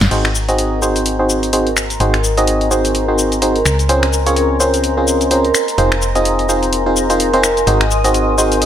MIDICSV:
0, 0, Header, 1, 6, 480
1, 0, Start_track
1, 0, Tempo, 472441
1, 114, Time_signature, 4, 2, 24, 8
1, 8793, End_track
2, 0, Start_track
2, 0, Title_t, "Analog synth pad"
2, 0, Program_c, 0, 89
2, 113, Note_on_c, 0, 70, 76
2, 113, Note_on_c, 0, 82, 73
2, 7794, Note_on_c, 0, 75, 76
2, 7794, Note_on_c, 0, 87, 79
2, 7805, Note_off_c, 0, 70, 0
2, 7805, Note_off_c, 0, 82, 0
2, 8793, Note_off_c, 0, 75, 0
2, 8793, Note_off_c, 0, 87, 0
2, 8793, End_track
3, 0, Start_track
3, 0, Title_t, "Ambient pad"
3, 0, Program_c, 1, 92
3, 115, Note_on_c, 1, 70, 82
3, 666, Note_on_c, 1, 75, 86
3, 1032, Note_on_c, 1, 84, 71
3, 1170, Note_on_c, 1, 80, 85
3, 8793, Note_off_c, 1, 70, 0
3, 8793, Note_off_c, 1, 75, 0
3, 8793, Note_off_c, 1, 80, 0
3, 8793, Note_off_c, 1, 84, 0
3, 8793, End_track
4, 0, Start_track
4, 0, Title_t, "FM electric piano"
4, 0, Program_c, 2, 5
4, 114, Note_on_c, 2, 60, 78
4, 114, Note_on_c, 2, 63, 72
4, 114, Note_on_c, 2, 66, 73
4, 114, Note_on_c, 2, 68, 74
4, 114, Note_on_c, 2, 72, 87
4, 273, Note_off_c, 2, 60, 0
4, 273, Note_off_c, 2, 63, 0
4, 273, Note_off_c, 2, 66, 0
4, 273, Note_off_c, 2, 68, 0
4, 273, Note_off_c, 2, 72, 0
4, 493, Note_on_c, 2, 60, 80
4, 493, Note_on_c, 2, 63, 75
4, 493, Note_on_c, 2, 66, 74
4, 493, Note_on_c, 2, 68, 75
4, 493, Note_on_c, 2, 75, 87
4, 810, Note_off_c, 2, 60, 0
4, 810, Note_off_c, 2, 63, 0
4, 810, Note_off_c, 2, 66, 0
4, 810, Note_off_c, 2, 68, 0
4, 810, Note_off_c, 2, 75, 0
4, 834, Note_on_c, 2, 60, 74
4, 834, Note_on_c, 2, 63, 66
4, 834, Note_on_c, 2, 66, 69
4, 834, Note_on_c, 2, 68, 66
4, 834, Note_on_c, 2, 72, 83
4, 1180, Note_off_c, 2, 60, 0
4, 1180, Note_off_c, 2, 63, 0
4, 1180, Note_off_c, 2, 66, 0
4, 1180, Note_off_c, 2, 68, 0
4, 1180, Note_off_c, 2, 72, 0
4, 1213, Note_on_c, 2, 60, 67
4, 1213, Note_on_c, 2, 63, 64
4, 1213, Note_on_c, 2, 66, 64
4, 1213, Note_on_c, 2, 68, 63
4, 1213, Note_on_c, 2, 72, 71
4, 1530, Note_off_c, 2, 60, 0
4, 1530, Note_off_c, 2, 63, 0
4, 1530, Note_off_c, 2, 66, 0
4, 1530, Note_off_c, 2, 68, 0
4, 1530, Note_off_c, 2, 72, 0
4, 1554, Note_on_c, 2, 60, 63
4, 1554, Note_on_c, 2, 63, 61
4, 1554, Note_on_c, 2, 66, 59
4, 1554, Note_on_c, 2, 68, 62
4, 1554, Note_on_c, 2, 72, 75
4, 1713, Note_off_c, 2, 60, 0
4, 1713, Note_off_c, 2, 63, 0
4, 1713, Note_off_c, 2, 66, 0
4, 1713, Note_off_c, 2, 68, 0
4, 1713, Note_off_c, 2, 72, 0
4, 2034, Note_on_c, 2, 60, 80
4, 2034, Note_on_c, 2, 63, 70
4, 2034, Note_on_c, 2, 66, 71
4, 2034, Note_on_c, 2, 68, 73
4, 2034, Note_on_c, 2, 72, 88
4, 2193, Note_off_c, 2, 60, 0
4, 2193, Note_off_c, 2, 63, 0
4, 2193, Note_off_c, 2, 66, 0
4, 2193, Note_off_c, 2, 68, 0
4, 2193, Note_off_c, 2, 72, 0
4, 2413, Note_on_c, 2, 63, 73
4, 2413, Note_on_c, 2, 66, 75
4, 2414, Note_on_c, 2, 60, 82
4, 2414, Note_on_c, 2, 68, 75
4, 2414, Note_on_c, 2, 75, 86
4, 2730, Note_off_c, 2, 60, 0
4, 2730, Note_off_c, 2, 63, 0
4, 2730, Note_off_c, 2, 66, 0
4, 2730, Note_off_c, 2, 68, 0
4, 2730, Note_off_c, 2, 75, 0
4, 2754, Note_on_c, 2, 60, 75
4, 2754, Note_on_c, 2, 63, 69
4, 2754, Note_on_c, 2, 66, 68
4, 2754, Note_on_c, 2, 68, 68
4, 2754, Note_on_c, 2, 72, 80
4, 3100, Note_off_c, 2, 60, 0
4, 3100, Note_off_c, 2, 63, 0
4, 3100, Note_off_c, 2, 66, 0
4, 3100, Note_off_c, 2, 68, 0
4, 3100, Note_off_c, 2, 72, 0
4, 3133, Note_on_c, 2, 60, 71
4, 3133, Note_on_c, 2, 63, 62
4, 3133, Note_on_c, 2, 66, 64
4, 3133, Note_on_c, 2, 68, 61
4, 3133, Note_on_c, 2, 72, 76
4, 3450, Note_off_c, 2, 60, 0
4, 3450, Note_off_c, 2, 63, 0
4, 3450, Note_off_c, 2, 66, 0
4, 3450, Note_off_c, 2, 68, 0
4, 3450, Note_off_c, 2, 72, 0
4, 3474, Note_on_c, 2, 60, 66
4, 3474, Note_on_c, 2, 63, 63
4, 3474, Note_on_c, 2, 66, 58
4, 3474, Note_on_c, 2, 68, 62
4, 3474, Note_on_c, 2, 72, 73
4, 3633, Note_off_c, 2, 60, 0
4, 3633, Note_off_c, 2, 63, 0
4, 3633, Note_off_c, 2, 66, 0
4, 3633, Note_off_c, 2, 68, 0
4, 3633, Note_off_c, 2, 72, 0
4, 3954, Note_on_c, 2, 60, 82
4, 3954, Note_on_c, 2, 61, 72
4, 3954, Note_on_c, 2, 65, 72
4, 3954, Note_on_c, 2, 68, 76
4, 3954, Note_on_c, 2, 72, 91
4, 4113, Note_off_c, 2, 60, 0
4, 4113, Note_off_c, 2, 61, 0
4, 4113, Note_off_c, 2, 65, 0
4, 4113, Note_off_c, 2, 68, 0
4, 4113, Note_off_c, 2, 72, 0
4, 4333, Note_on_c, 2, 60, 82
4, 4333, Note_on_c, 2, 61, 75
4, 4333, Note_on_c, 2, 65, 77
4, 4333, Note_on_c, 2, 68, 72
4, 4333, Note_on_c, 2, 73, 89
4, 4650, Note_off_c, 2, 60, 0
4, 4650, Note_off_c, 2, 61, 0
4, 4650, Note_off_c, 2, 65, 0
4, 4650, Note_off_c, 2, 68, 0
4, 4650, Note_off_c, 2, 73, 0
4, 4674, Note_on_c, 2, 61, 72
4, 4674, Note_on_c, 2, 72, 86
4, 4675, Note_on_c, 2, 60, 72
4, 4675, Note_on_c, 2, 65, 67
4, 4675, Note_on_c, 2, 68, 68
4, 5020, Note_off_c, 2, 60, 0
4, 5020, Note_off_c, 2, 61, 0
4, 5020, Note_off_c, 2, 65, 0
4, 5020, Note_off_c, 2, 68, 0
4, 5020, Note_off_c, 2, 72, 0
4, 5053, Note_on_c, 2, 61, 62
4, 5053, Note_on_c, 2, 65, 62
4, 5053, Note_on_c, 2, 68, 61
4, 5053, Note_on_c, 2, 72, 74
4, 5054, Note_on_c, 2, 60, 70
4, 5370, Note_off_c, 2, 60, 0
4, 5370, Note_off_c, 2, 61, 0
4, 5370, Note_off_c, 2, 65, 0
4, 5370, Note_off_c, 2, 68, 0
4, 5370, Note_off_c, 2, 72, 0
4, 5394, Note_on_c, 2, 60, 66
4, 5394, Note_on_c, 2, 61, 62
4, 5394, Note_on_c, 2, 65, 60
4, 5394, Note_on_c, 2, 68, 60
4, 5394, Note_on_c, 2, 72, 76
4, 5553, Note_off_c, 2, 60, 0
4, 5553, Note_off_c, 2, 61, 0
4, 5553, Note_off_c, 2, 65, 0
4, 5553, Note_off_c, 2, 68, 0
4, 5553, Note_off_c, 2, 72, 0
4, 5874, Note_on_c, 2, 60, 80
4, 5874, Note_on_c, 2, 63, 72
4, 5874, Note_on_c, 2, 65, 74
4, 5874, Note_on_c, 2, 68, 72
4, 5874, Note_on_c, 2, 72, 89
4, 6033, Note_off_c, 2, 60, 0
4, 6033, Note_off_c, 2, 63, 0
4, 6033, Note_off_c, 2, 65, 0
4, 6033, Note_off_c, 2, 68, 0
4, 6033, Note_off_c, 2, 72, 0
4, 6253, Note_on_c, 2, 60, 83
4, 6253, Note_on_c, 2, 63, 76
4, 6253, Note_on_c, 2, 65, 74
4, 6253, Note_on_c, 2, 68, 76
4, 6253, Note_on_c, 2, 75, 87
4, 6570, Note_off_c, 2, 60, 0
4, 6570, Note_off_c, 2, 63, 0
4, 6570, Note_off_c, 2, 65, 0
4, 6570, Note_off_c, 2, 68, 0
4, 6570, Note_off_c, 2, 75, 0
4, 6594, Note_on_c, 2, 60, 75
4, 6594, Note_on_c, 2, 63, 68
4, 6594, Note_on_c, 2, 65, 67
4, 6594, Note_on_c, 2, 68, 68
4, 6594, Note_on_c, 2, 72, 83
4, 6940, Note_off_c, 2, 60, 0
4, 6940, Note_off_c, 2, 63, 0
4, 6940, Note_off_c, 2, 65, 0
4, 6940, Note_off_c, 2, 68, 0
4, 6940, Note_off_c, 2, 72, 0
4, 6973, Note_on_c, 2, 60, 70
4, 6973, Note_on_c, 2, 63, 59
4, 6973, Note_on_c, 2, 65, 61
4, 6973, Note_on_c, 2, 68, 62
4, 6973, Note_on_c, 2, 72, 74
4, 7185, Note_off_c, 2, 60, 0
4, 7185, Note_off_c, 2, 63, 0
4, 7185, Note_off_c, 2, 65, 0
4, 7185, Note_off_c, 2, 68, 0
4, 7185, Note_off_c, 2, 72, 0
4, 7213, Note_on_c, 2, 60, 77
4, 7213, Note_on_c, 2, 63, 67
4, 7213, Note_on_c, 2, 65, 69
4, 7213, Note_on_c, 2, 68, 69
4, 7213, Note_on_c, 2, 72, 88
4, 7411, Note_off_c, 2, 60, 0
4, 7411, Note_off_c, 2, 63, 0
4, 7411, Note_off_c, 2, 65, 0
4, 7411, Note_off_c, 2, 68, 0
4, 7411, Note_off_c, 2, 72, 0
4, 7453, Note_on_c, 2, 60, 89
4, 7453, Note_on_c, 2, 63, 81
4, 7453, Note_on_c, 2, 65, 80
4, 7453, Note_on_c, 2, 68, 82
4, 7453, Note_on_c, 2, 72, 99
4, 7582, Note_off_c, 2, 60, 0
4, 7582, Note_off_c, 2, 63, 0
4, 7582, Note_off_c, 2, 65, 0
4, 7582, Note_off_c, 2, 68, 0
4, 7582, Note_off_c, 2, 72, 0
4, 7794, Note_on_c, 2, 60, 79
4, 7794, Note_on_c, 2, 63, 75
4, 7794, Note_on_c, 2, 66, 77
4, 7794, Note_on_c, 2, 68, 74
4, 7794, Note_on_c, 2, 72, 88
4, 7953, Note_off_c, 2, 60, 0
4, 7953, Note_off_c, 2, 63, 0
4, 7953, Note_off_c, 2, 66, 0
4, 7953, Note_off_c, 2, 68, 0
4, 7953, Note_off_c, 2, 72, 0
4, 8173, Note_on_c, 2, 60, 83
4, 8173, Note_on_c, 2, 63, 72
4, 8173, Note_on_c, 2, 66, 76
4, 8173, Note_on_c, 2, 68, 76
4, 8173, Note_on_c, 2, 75, 88
4, 8490, Note_off_c, 2, 60, 0
4, 8490, Note_off_c, 2, 63, 0
4, 8490, Note_off_c, 2, 66, 0
4, 8490, Note_off_c, 2, 68, 0
4, 8490, Note_off_c, 2, 75, 0
4, 8514, Note_on_c, 2, 63, 69
4, 8515, Note_on_c, 2, 60, 75
4, 8515, Note_on_c, 2, 66, 68
4, 8515, Note_on_c, 2, 68, 70
4, 8515, Note_on_c, 2, 72, 82
4, 8793, Note_off_c, 2, 60, 0
4, 8793, Note_off_c, 2, 63, 0
4, 8793, Note_off_c, 2, 66, 0
4, 8793, Note_off_c, 2, 68, 0
4, 8793, Note_off_c, 2, 72, 0
4, 8793, End_track
5, 0, Start_track
5, 0, Title_t, "FM bass"
5, 0, Program_c, 3, 39
5, 12, Note_on_c, 3, 30, 103
5, 91, Note_off_c, 3, 30, 0
5, 114, Note_on_c, 3, 32, 84
5, 2014, Note_off_c, 3, 32, 0
5, 2034, Note_on_c, 3, 32, 83
5, 3694, Note_off_c, 3, 32, 0
5, 3714, Note_on_c, 3, 37, 83
5, 5614, Note_off_c, 3, 37, 0
5, 5874, Note_on_c, 3, 29, 83
5, 7774, Note_off_c, 3, 29, 0
5, 7794, Note_on_c, 3, 32, 84
5, 8793, Note_off_c, 3, 32, 0
5, 8793, End_track
6, 0, Start_track
6, 0, Title_t, "Drums"
6, 13, Note_on_c, 9, 38, 81
6, 13, Note_on_c, 9, 42, 36
6, 13, Note_on_c, 9, 54, 40
6, 18, Note_off_c, 9, 38, 0
6, 18, Note_on_c, 9, 38, 55
6, 115, Note_off_c, 9, 42, 0
6, 115, Note_off_c, 9, 54, 0
6, 115, Note_on_c, 9, 42, 71
6, 115, Note_on_c, 9, 49, 73
6, 117, Note_on_c, 9, 69, 30
6, 120, Note_off_c, 9, 38, 0
6, 216, Note_off_c, 9, 42, 0
6, 216, Note_off_c, 9, 49, 0
6, 218, Note_off_c, 9, 69, 0
6, 253, Note_on_c, 9, 26, 55
6, 253, Note_on_c, 9, 42, 34
6, 354, Note_off_c, 9, 26, 0
6, 354, Note_off_c, 9, 42, 0
6, 357, Note_on_c, 9, 69, 70
6, 458, Note_off_c, 9, 69, 0
6, 493, Note_on_c, 9, 42, 52
6, 495, Note_on_c, 9, 69, 42
6, 594, Note_off_c, 9, 42, 0
6, 594, Note_on_c, 9, 42, 74
6, 597, Note_off_c, 9, 69, 0
6, 597, Note_on_c, 9, 69, 29
6, 696, Note_off_c, 9, 42, 0
6, 698, Note_off_c, 9, 69, 0
6, 836, Note_on_c, 9, 69, 70
6, 938, Note_off_c, 9, 69, 0
6, 973, Note_on_c, 9, 42, 49
6, 975, Note_on_c, 9, 69, 39
6, 1074, Note_off_c, 9, 42, 0
6, 1074, Note_on_c, 9, 42, 76
6, 1077, Note_off_c, 9, 69, 0
6, 1077, Note_on_c, 9, 69, 31
6, 1176, Note_off_c, 9, 42, 0
6, 1178, Note_off_c, 9, 69, 0
6, 1316, Note_on_c, 9, 69, 67
6, 1418, Note_off_c, 9, 69, 0
6, 1453, Note_on_c, 9, 42, 34
6, 1455, Note_on_c, 9, 69, 41
6, 1554, Note_off_c, 9, 42, 0
6, 1554, Note_on_c, 9, 42, 75
6, 1556, Note_off_c, 9, 69, 0
6, 1556, Note_on_c, 9, 69, 30
6, 1656, Note_off_c, 9, 42, 0
6, 1658, Note_off_c, 9, 69, 0
6, 1693, Note_on_c, 9, 42, 34
6, 1794, Note_on_c, 9, 26, 58
6, 1795, Note_off_c, 9, 42, 0
6, 1796, Note_on_c, 9, 69, 70
6, 1896, Note_off_c, 9, 26, 0
6, 1898, Note_off_c, 9, 69, 0
6, 1933, Note_on_c, 9, 42, 34
6, 1935, Note_on_c, 9, 69, 38
6, 2034, Note_off_c, 9, 42, 0
6, 2034, Note_on_c, 9, 42, 71
6, 2037, Note_off_c, 9, 69, 0
6, 2037, Note_on_c, 9, 69, 30
6, 2136, Note_off_c, 9, 42, 0
6, 2138, Note_off_c, 9, 69, 0
6, 2173, Note_on_c, 9, 26, 58
6, 2173, Note_on_c, 9, 42, 34
6, 2275, Note_off_c, 9, 26, 0
6, 2275, Note_off_c, 9, 42, 0
6, 2277, Note_on_c, 9, 69, 65
6, 2378, Note_off_c, 9, 69, 0
6, 2413, Note_on_c, 9, 42, 48
6, 2415, Note_on_c, 9, 69, 41
6, 2514, Note_off_c, 9, 42, 0
6, 2514, Note_on_c, 9, 42, 72
6, 2517, Note_off_c, 9, 69, 0
6, 2517, Note_on_c, 9, 69, 30
6, 2616, Note_off_c, 9, 42, 0
6, 2618, Note_off_c, 9, 69, 0
6, 2653, Note_on_c, 9, 42, 33
6, 2754, Note_off_c, 9, 42, 0
6, 2757, Note_on_c, 9, 69, 71
6, 2858, Note_off_c, 9, 69, 0
6, 2893, Note_on_c, 9, 42, 49
6, 2896, Note_on_c, 9, 69, 39
6, 2995, Note_off_c, 9, 42, 0
6, 2995, Note_on_c, 9, 42, 73
6, 2997, Note_off_c, 9, 69, 0
6, 2997, Note_on_c, 9, 69, 30
6, 3096, Note_off_c, 9, 42, 0
6, 3099, Note_off_c, 9, 69, 0
6, 3237, Note_on_c, 9, 69, 66
6, 3338, Note_off_c, 9, 69, 0
6, 3373, Note_on_c, 9, 42, 35
6, 3375, Note_on_c, 9, 69, 42
6, 3474, Note_off_c, 9, 42, 0
6, 3474, Note_on_c, 9, 42, 75
6, 3477, Note_off_c, 9, 69, 0
6, 3477, Note_on_c, 9, 69, 31
6, 3576, Note_off_c, 9, 42, 0
6, 3578, Note_off_c, 9, 69, 0
6, 3613, Note_on_c, 9, 42, 31
6, 3714, Note_off_c, 9, 42, 0
6, 3714, Note_on_c, 9, 26, 60
6, 3717, Note_on_c, 9, 69, 70
6, 3816, Note_off_c, 9, 26, 0
6, 3818, Note_off_c, 9, 69, 0
6, 3853, Note_on_c, 9, 42, 32
6, 3855, Note_on_c, 9, 69, 37
6, 3954, Note_off_c, 9, 42, 0
6, 3954, Note_on_c, 9, 42, 69
6, 3957, Note_off_c, 9, 69, 0
6, 3957, Note_on_c, 9, 69, 28
6, 4056, Note_off_c, 9, 42, 0
6, 4058, Note_off_c, 9, 69, 0
6, 4093, Note_on_c, 9, 26, 62
6, 4093, Note_on_c, 9, 42, 33
6, 4195, Note_off_c, 9, 26, 0
6, 4195, Note_off_c, 9, 42, 0
6, 4197, Note_on_c, 9, 69, 64
6, 4298, Note_off_c, 9, 69, 0
6, 4333, Note_on_c, 9, 42, 48
6, 4336, Note_on_c, 9, 69, 39
6, 4435, Note_off_c, 9, 42, 0
6, 4435, Note_on_c, 9, 42, 72
6, 4437, Note_off_c, 9, 69, 0
6, 4437, Note_on_c, 9, 69, 29
6, 4536, Note_off_c, 9, 42, 0
6, 4539, Note_off_c, 9, 69, 0
6, 4677, Note_on_c, 9, 69, 68
6, 4778, Note_off_c, 9, 69, 0
6, 4813, Note_on_c, 9, 42, 46
6, 4815, Note_on_c, 9, 69, 40
6, 4914, Note_off_c, 9, 42, 0
6, 4914, Note_on_c, 9, 42, 71
6, 4916, Note_off_c, 9, 69, 0
6, 4916, Note_on_c, 9, 69, 29
6, 5016, Note_off_c, 9, 42, 0
6, 5018, Note_off_c, 9, 69, 0
6, 5156, Note_on_c, 9, 69, 65
6, 5258, Note_off_c, 9, 69, 0
6, 5293, Note_on_c, 9, 42, 34
6, 5295, Note_on_c, 9, 69, 41
6, 5394, Note_off_c, 9, 42, 0
6, 5394, Note_on_c, 9, 42, 70
6, 5396, Note_off_c, 9, 69, 0
6, 5396, Note_on_c, 9, 69, 31
6, 5495, Note_off_c, 9, 42, 0
6, 5498, Note_off_c, 9, 69, 0
6, 5533, Note_on_c, 9, 42, 31
6, 5634, Note_off_c, 9, 42, 0
6, 5634, Note_on_c, 9, 26, 64
6, 5636, Note_on_c, 9, 69, 70
6, 5735, Note_off_c, 9, 26, 0
6, 5738, Note_off_c, 9, 69, 0
6, 5773, Note_on_c, 9, 42, 32
6, 5775, Note_on_c, 9, 69, 39
6, 5874, Note_off_c, 9, 42, 0
6, 5874, Note_on_c, 9, 42, 68
6, 5876, Note_off_c, 9, 69, 0
6, 5876, Note_on_c, 9, 69, 30
6, 5975, Note_off_c, 9, 42, 0
6, 5978, Note_off_c, 9, 69, 0
6, 6013, Note_on_c, 9, 26, 61
6, 6013, Note_on_c, 9, 42, 32
6, 6114, Note_off_c, 9, 26, 0
6, 6114, Note_off_c, 9, 42, 0
6, 6116, Note_on_c, 9, 69, 70
6, 6218, Note_off_c, 9, 69, 0
6, 6253, Note_on_c, 9, 42, 48
6, 6255, Note_on_c, 9, 69, 41
6, 6354, Note_off_c, 9, 42, 0
6, 6354, Note_on_c, 9, 42, 68
6, 6356, Note_off_c, 9, 69, 0
6, 6356, Note_on_c, 9, 69, 30
6, 6456, Note_off_c, 9, 42, 0
6, 6458, Note_off_c, 9, 69, 0
6, 6493, Note_on_c, 9, 42, 32
6, 6594, Note_off_c, 9, 42, 0
6, 6596, Note_on_c, 9, 69, 68
6, 6698, Note_off_c, 9, 69, 0
6, 6733, Note_on_c, 9, 42, 46
6, 6735, Note_on_c, 9, 69, 39
6, 6834, Note_off_c, 9, 42, 0
6, 6834, Note_on_c, 9, 42, 70
6, 6836, Note_off_c, 9, 69, 0
6, 6836, Note_on_c, 9, 69, 30
6, 6935, Note_off_c, 9, 42, 0
6, 6938, Note_off_c, 9, 69, 0
6, 7076, Note_on_c, 9, 69, 67
6, 7178, Note_off_c, 9, 69, 0
6, 7213, Note_on_c, 9, 42, 33
6, 7215, Note_on_c, 9, 69, 39
6, 7314, Note_off_c, 9, 42, 0
6, 7314, Note_on_c, 9, 42, 71
6, 7316, Note_off_c, 9, 69, 0
6, 7316, Note_on_c, 9, 69, 31
6, 7416, Note_off_c, 9, 42, 0
6, 7418, Note_off_c, 9, 69, 0
6, 7453, Note_on_c, 9, 42, 30
6, 7554, Note_off_c, 9, 42, 0
6, 7554, Note_on_c, 9, 26, 66
6, 7556, Note_on_c, 9, 69, 71
6, 7655, Note_off_c, 9, 26, 0
6, 7658, Note_off_c, 9, 69, 0
6, 7693, Note_on_c, 9, 42, 32
6, 7695, Note_on_c, 9, 69, 38
6, 7794, Note_off_c, 9, 42, 0
6, 7794, Note_on_c, 9, 42, 68
6, 7796, Note_off_c, 9, 69, 0
6, 7796, Note_on_c, 9, 69, 31
6, 7896, Note_off_c, 9, 42, 0
6, 7898, Note_off_c, 9, 69, 0
6, 7933, Note_on_c, 9, 26, 61
6, 7933, Note_on_c, 9, 42, 32
6, 8035, Note_off_c, 9, 26, 0
6, 8035, Note_off_c, 9, 42, 0
6, 8037, Note_on_c, 9, 69, 69
6, 8138, Note_off_c, 9, 69, 0
6, 8173, Note_on_c, 9, 42, 46
6, 8175, Note_on_c, 9, 69, 42
6, 8274, Note_off_c, 9, 42, 0
6, 8274, Note_on_c, 9, 42, 71
6, 8277, Note_off_c, 9, 69, 0
6, 8277, Note_on_c, 9, 69, 31
6, 8376, Note_off_c, 9, 42, 0
6, 8378, Note_off_c, 9, 69, 0
6, 8517, Note_on_c, 9, 69, 71
6, 8618, Note_off_c, 9, 69, 0
6, 8653, Note_on_c, 9, 42, 44
6, 8656, Note_on_c, 9, 69, 42
6, 8755, Note_off_c, 9, 42, 0
6, 8755, Note_on_c, 9, 42, 72
6, 8757, Note_off_c, 9, 69, 0
6, 8757, Note_on_c, 9, 69, 33
6, 8793, Note_off_c, 9, 42, 0
6, 8793, Note_off_c, 9, 69, 0
6, 8793, End_track
0, 0, End_of_file